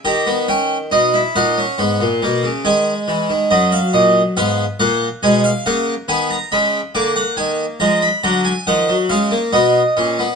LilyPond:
<<
  \new Staff \with { instrumentName = "Harpsichord" } { \time 4/4 \key gis \minor \tempo 4 = 70 ais''8 g''8 dis''8 fis''4. gis''4 | dis''16 eis''16 dis''8 eis''8 fis''8 gis''16 eis''16 fis''8 gis''16 ais''16 b''8 | d'''16 fis''16 gis''8 ais''16 b''16 ais''16 gis''16 fis''8 eis''8 dis''4 | }
  \new Staff \with { instrumentName = "Harpsichord" } { \clef bass \time 4/4 \key gis \minor << { g'16 b16 cis'8 dis'16 e'16 dis'16 cis'16 b8 ais8 gis4 | fis4 b8 ais8 gis8 ais8 b8 gis8 | ais4 gis8 fis8 eis16 fis16 gis16 ais16 b8 cis'16 b16 | } \\ { dis4 b,8 ais,8 gis,16 ais,16 b,16 cis16 dis8 e16 dis16 | fis,8 ais,8 gis,8 ais,8 b,8 cis8 dis8 cis8 | d8 dis8 eis8 d8 dis8 cis8 b,8 ais,8 | } >> }
>>